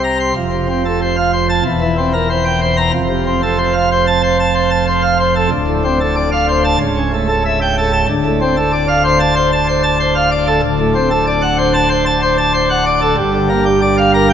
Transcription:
0.00 0.32 C2 medium
0.00 0.32 C3 medium
0.04 0.18 A#5 medium
0.20 0.33 C6 medium
0.36 1.62 F1 medium
0.36 1.62 F2 medium
0.53 0.67 C3 medium
0.69 0.83 C4 medium
0.85 0.99 A4 medium
1.02 1.16 C5 medium
1.17 1.31 F5 medium
1.33 1.47 C5 medium
1.49 1.63 A5 loud
1.65 2.91 E1 medium
1.65 2.91 E2 medium
1.81 1.96 E3 medium
1.98 2.12 C4 medium
2.13 2.28 A#4 medium
2.30 2.44 C5 medium
2.45 2.60 G5 medium
2.61 2.76 C5 medium
2.77 2.91 A#5 loud
2.94 5.47 F1 medium
2.94 5.47 F2 medium
3.09 3.24 C3 medium
3.26 3.41 C4 medium
3.43 3.57 A4 medium
3.58 3.73 C5 medium
3.74 3.89 F5 medium
3.92 4.06 C5 medium
4.07 4.21 A5 loud
4.23 4.37 C5 medium
4.39 4.54 A5 medium
4.55 4.69 C5 medium
4.71 4.85 A5 medium
4.87 5.02 C5 medium
5.03 5.17 F5 medium
5.20 5.34 C5 medium
5.36 5.49 A4 medium
5.51 6.76 D1 medium
5.51 6.76 D2 medium
5.67 5.82 A2 medium
5.84 5.99 C4 medium
6.01 6.15 A4 medium
6.16 6.30 D5 medium
6.32 6.47 F5 medium
6.49 6.63 C5 medium
6.65 6.78 A5 loud
6.81 8.05 C#1 loud
6.81 8.05 C#2 loud
6.97 7.11 C#3 medium
7.13 7.27 A3 medium
7.29 7.43 A4 medium
7.46 7.59 E5 medium
7.62 7.76 G5 medium
7.78 7.92 A4 medium
7.93 8.06 A5 loud
8.09 10.60 D1 loud
8.09 10.60 D2 loud
8.26 8.40 A2 medium
8.41 8.55 C4 medium
8.57 8.71 A4 medium
8.73 8.87 D5 medium
8.88 9.03 F5 medium
9.04 9.19 C5 medium
9.20 9.34 A5 loud
9.36 9.50 C5 loud
9.52 9.66 A5 medium
9.68 9.82 C5 medium
9.83 9.98 A5 medium
10.00 10.14 C5 medium
10.15 10.30 F5 medium
10.32 10.46 D5 medium
10.47 10.61 A4 medium
10.62 13.14 D1 loud
10.62 13.14 D2 loud
10.79 10.93 A2 medium
10.95 11.09 C4 medium
11.11 11.25 A4 medium
11.27 11.41 D5 medium
11.42 11.57 F#5 medium
11.58 11.73 C5 medium
11.74 11.89 A5 loud
11.89 12.04 C5 loud
12.06 12.21 A5 medium
12.22 12.37 C5 medium
12.38 12.52 A5 medium
12.54 12.68 C5 medium
12.70 12.84 F#5 medium
12.86 13.00 D5 medium
13.01 13.15 A4 medium
13.17 14.33 G1 loud
13.17 14.33 G2 loud
13.34 13.48 D3 medium
13.49 13.64 A#3 medium
13.66 13.80 G4 medium
13.82 13.96 D5 medium
13.98 14.12 F5 medium
14.14 14.28 A#4 medium
14.30 14.33 G5 loud

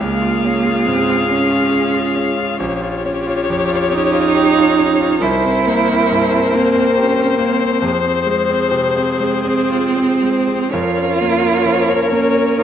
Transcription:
0.00 2.56 C#2 medium
0.00 0.87 A#3 medium
0.00 2.59 G#4 medium
0.00 2.59 F5 medium
0.22 0.56 F4 soft
0.45 0.79 C#4 medium
0.66 1.00 F4 medium
0.86 1.21 G#2 medium
0.86 1.29 C4 medium
1.09 1.43 F4 medium
1.29 2.56 C#4 medium
1.29 1.64 C#4 medium
1.50 1.85 F4 medium
1.71 2.06 G#4 soft
1.94 2.28 F4 medium
2.15 2.50 C#4 medium
2.37 2.59 F4 soft
2.59 5.18 A#1 medium
2.59 5.17 G4 medium
2.59 5.17 C#5 medium
2.82 3.17 F4 soft
3.05 3.39 C#4 medium
3.26 3.60 F4 soft
3.50 3.83 F2 soft
3.68 4.03 F4 medium
3.90 4.26 C#4 medium
3.90 5.23 D#4 loud
4.13 4.48 F4 medium
4.34 4.69 G4 medium
4.57 4.91 F4 medium
4.79 5.13 C#4 medium
5.00 5.21 F4 soft
5.20 7.80 C2 medium
5.20 6.56 E4 loud
5.20 7.80 A#4 medium
5.20 10.68 C5 medium
5.45 5.79 C4 medium
5.67 6.02 A#3 medium
5.89 6.24 C4 medium
6.11 6.46 G2 medium
6.33 6.68 C4 medium
6.54 6.89 A#3 medium
6.54 7.00 C4 medium
6.76 7.11 C4 medium
6.98 7.43 C#4 medium
6.98 7.32 G4 medium
7.18 7.53 C4 medium
7.39 7.74 A#3 medium
7.39 7.84 C4 medium
7.61 7.83 C4 medium
7.82 10.67 F2 medium
7.82 10.68 G#4 medium
8.04 8.42 C4 soft
8.27 8.64 G#3 medium
8.50 8.88 C4 medium
8.71 9.10 C3 medium
8.96 9.35 C4 medium
9.20 9.59 G#3 soft
9.20 10.75 C4 loud
9.45 9.85 C4 medium
9.70 10.11 F4 medium
9.96 10.38 C4 medium
10.23 10.63 G#3 medium
10.48 10.73 C4 soft
10.72 12.63 F2 medium
10.72 12.11 F4 loud
10.72 12.63 A#4 medium
10.72 12.63 C#5 medium
10.97 11.34 C#4 soft
11.21 11.57 A#3 medium
11.43 11.79 C#4 soft
11.66 12.02 F3 soft
11.88 12.25 C#4 soft
12.10 12.49 A#3 medium
12.10 12.59 C#4 medium
12.34 12.63 C#4 medium
12.58 12.63 D#4 medium
12.58 12.63 F4 medium

